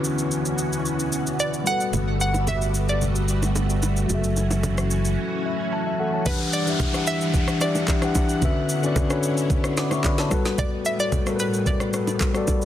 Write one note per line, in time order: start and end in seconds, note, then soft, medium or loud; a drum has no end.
0.00 1.65 D2 medium
0.00 1.61 D3 medium
0.00 1.65 E3 medium
0.00 4.06 B3 medium
0.00 1.62 C#4 medium
0.00 1.65 C#4 medium
0.00 1.63 E4 medium
0.00 1.64 F#4 medium
0.00 1.65 F#4 medium
0.00 1.65 B4 medium
0.00 downlifter medium
0.04 shaker medium
0.19 shaker medium
0.31 shaker medium
0.46 shaker medium
0.58 shaker medium
0.73 shaker medium
0.86 shaker medium
0.99 shaker medium
1.12 shaker medium
1.27 shaker medium
1.40 1.68 D5 medium
1.40 shaker medium
1.54 shaker soft
1.63 3.77 G3 medium
1.63 4.07 G3 medium
1.63 6.22 A3 medium
1.63 3.78 F#4 medium
1.63 4.07 F#4 medium
1.63 2.20 F#5 loud
1.63 shaker medium
1.69 3.80 A4 medium
1.69 3.81 B4 medium
1.81 shaker medium
1.93 4.06 G1 medium
1.93 low conga medium
1.93 shaker medium
2.21 2.33 F#5 loud
2.21 shaker medium
2.34 low bongo medium
2.34 shaker medium
2.47 2.86 E5 medium
2.47 high bongo medium
2.47 low conga medium
2.47 shaker medium
2.62 shaker medium
2.74 shaker medium
2.89 3.79 D5 medium
2.89 shaker medium
3.02 low conga medium
3.02 shaker medium
3.15 shaker medium
3.28 shaker medium
3.43 low bongo medium
3.43 shaker medium
3.56 high bongo medium
3.56 shaker medium
3.70 shaker soft
3.83 low bongo medium
3.83 shaker medium
3.97 shaker medium
4.07 5.16 F#1 medium
4.07 6.24 E3 medium
4.07 6.20 F#3 medium
4.07 6.24 C#4 medium
4.07 6.22 F#4 medium
4.07 6.24 F#4 medium
4.07 low conga medium
4.07 shaker medium
4.12 4.18 G#4 medium
4.12 5.45 E5 medium
4.18 5.47 A4 medium
4.24 shaker soft
4.37 low bongo soft
4.37 shaker medium
4.51 low bongo medium
4.51 shaker medium
4.63 high bongo medium
4.63 low conga medium
4.63 shaker medium
4.78 cross-stick medium
4.78 shaker medium
4.91 shaker medium
5.05 shaker medium
5.46 5.70 E5 medium
5.73 6.12 A5 medium
5.87 5.99 E5 medium
6.00 6.13 A4 medium
6.00 6.13 F#5 medium
6.14 6.39 C#5 medium
6.14 6.39 A5 medium
6.25 6.58 E3 medium
6.25 8.40 E3 medium
6.25 8.40 G3 medium
6.25 6.59 D4 medium
6.25 8.40 D4 medium
6.25 6.59 G4 medium
6.25 6.38 B4 medium
6.25 10.27 F#5 medium
6.25 6.60 F#5 medium
6.25 kick loud
6.25 crash medium
6.25 downlifter medium
6.25 low conga medium
6.25 shaker medium
6.53 7.03 D5 loud
6.53 shaker medium
6.66 6.88 E3 medium
6.66 6.88 D4 medium
6.66 6.89 G4 medium
6.66 6.90 E5 medium
6.66 shaker medium
6.80 kick loud
6.80 high bongo medium
6.80 low conga medium
6.80 shaker medium
6.93 7.47 E3 medium
6.93 7.48 D4 medium
6.93 7.49 G4 medium
6.93 7.49 F#5 medium
6.93 cross-stick medium
6.93 shaker medium
7.07 7.63 E5 loud
7.07 shaker medium
7.21 shaker medium
7.34 kick loud
7.34 low conga medium
7.34 shaker medium
7.48 cross-stick loud
7.48 shaker medium
7.60 7.93 E3 medium
7.60 7.94 D4 medium
7.60 7.94 G4 medium
7.60 8.12 D5 medium
7.60 7.95 E5 medium
7.60 cross-stick loud
7.60 shaker medium
7.75 low bongo medium
7.75 shaker medium
7.88 kick medium
7.88 clap medium
7.88 high bongo medium
7.88 shaker medium
8.01 8.34 E3 medium
8.01 8.34 D4 medium
8.01 8.35 G4 medium
8.01 8.36 F#5 medium
8.01 cross-stick medium
8.01 shaker medium
8.15 kick medium
8.15 high bongo medium
8.15 low bongo medium
8.15 shaker medium
8.29 shaker medium
8.41 8.74 D3 medium
8.41 10.29 D3 medium
8.41 12.65 B3 medium
8.41 8.75 C#4 medium
8.41 10.29 C#4 medium
8.41 10.29 E4 medium
8.41 8.75 F#4 medium
8.41 8.76 B4 medium
8.41 8.76 E5 medium
8.41 kick loud
8.41 low conga medium
8.41 shaker medium
8.69 shaker medium
8.82 9.04 D3 medium
8.82 9.05 C#4 medium
8.82 9.05 F#4 medium
8.82 9.05 B4 medium
8.82 9.06 D5 loud
8.82 shaker medium
8.96 kick loud
8.96 high bongo medium
8.96 low conga medium
8.96 shaker medium
9.09 9.64 D3 medium
9.09 9.64 C#4 medium
9.09 9.65 F#4 medium
9.09 9.65 B4 medium
9.09 9.66 C#5 loud
9.09 cross-stick medium
9.09 shaker medium
9.23 shaker medium
9.37 shaker medium
9.50 kick loud
9.50 low conga medium
9.50 shaker medium
9.64 cross-stick loud
9.64 shaker medium
9.77 9.91 F#5 medium
9.77 9.91 D6 medium
9.77 cross-stick loud
9.77 snare medium
9.77 shaker medium
9.91 10.04 E5 medium
9.91 10.04 C#6 medium
9.91 cross-stick medium
9.91 low bongo medium
9.91 shaker medium
10.04 10.18 D5 medium
10.04 10.18 B5 medium
10.04 kick medium
10.04 clap medium
10.04 high bongo medium
10.04 shaker medium
10.18 10.45 C#5 medium
10.18 10.44 A5 medium
10.18 snare medium
10.18 shaker medium
10.30 12.65 A2 medium
10.30 10.85 G3 medium
10.30 12.65 G3 medium
10.30 10.85 F#4 medium
10.30 10.86 A4 medium
10.30 10.87 B4 loud
10.30 kick medium
10.30 cross-stick medium
10.30 high bongo medium
10.30 low bongo medium
10.30 shaker medium
10.45 snare medium
10.45 shaker medium
10.58 10.86 D5 loud
10.58 kick loud
10.58 low conga medium
10.58 shaker medium
10.85 11.00 E5 loud
10.85 shaker medium
10.98 11.20 G3 medium
10.98 11.21 F#4 medium
10.98 11.22 A4 medium
10.98 11.22 C#5 medium
10.98 11.41 D5 loud
10.98 shaker medium
11.12 kick loud
11.12 high bongo medium
11.12 low conga medium
11.12 shaker medium
11.25 11.80 G3 medium
11.25 11.81 F#4 medium
11.25 11.81 A4 medium
11.25 11.34 A#4 medium
11.25 cross-stick medium
11.25 shaker medium
11.36 11.85 B4 medium
11.36 shaker medium
11.40 11.67 B4 medium
11.54 shaker medium
11.66 12.44 D5 medium
11.66 kick loud
11.66 low conga medium
11.66 shaker medium
11.80 cross-stick loud
11.80 shaker medium
11.92 12.26 G3 medium
11.92 12.26 F#4 medium
11.92 12.27 A4 medium
11.92 12.28 B4 medium
11.92 cross-stick loud
11.92 shaker medium
12.07 low bongo medium
12.07 shaker medium
12.20 kick medium
12.20 clap medium
12.20 high bongo medium
12.20 shaker medium
12.33 12.65 G3 medium
12.33 12.65 F#4 medium
12.33 12.65 A4 medium
12.33 12.65 D5 medium
12.33 cross-stick medium
12.33 shaker medium
12.48 kick medium
12.48 high bongo medium
12.48 low bongo medium
12.48 shaker medium
12.62 shaker medium